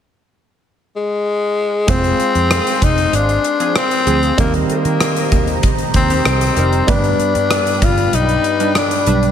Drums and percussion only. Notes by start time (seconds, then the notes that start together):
1.88 kick, closed hi-hat
2.04 closed hi-hat
2.20 closed hi-hat
2.35 closed hi-hat
2.51 cross-stick, closed hi-hat
2.67 closed hi-hat
2.82 kick, closed hi-hat
2.98 closed hi-hat
3.13 closed hi-hat
3.29 closed hi-hat
3.44 closed hi-hat
3.60 closed hi-hat
3.76 cross-stick, closed hi-hat
3.91 closed hi-hat
4.07 closed hi-hat
4.23 closed hi-hat
4.38 kick, closed hi-hat
4.54 closed hi-hat
4.70 closed hi-hat
4.85 closed hi-hat
5.00 cross-stick, closed hi-hat
5.16 closed hi-hat
5.32 kick, closed hi-hat
5.47 closed hi-hat
5.63 kick, closed hi-hat
5.78 closed hi-hat
5.94 kick, closed hi-hat
6.10 closed hi-hat
6.25 cross-stick, closed hi-hat
6.41 closed hi-hat
6.57 closed hi-hat
6.73 closed hi-hat
6.88 kick, closed hi-hat
7.04 closed hi-hat
7.20 closed hi-hat
7.35 closed hi-hat
7.51 cross-stick, closed hi-hat
7.67 closed hi-hat
7.82 kick, closed hi-hat
7.98 closed hi-hat
8.13 closed hi-hat
8.29 closed hi-hat
8.44 closed hi-hat
8.60 closed hi-hat
8.75 cross-stick, closed hi-hat
8.91 closed hi-hat
9.06 closed hi-hat
9.23 closed hi-hat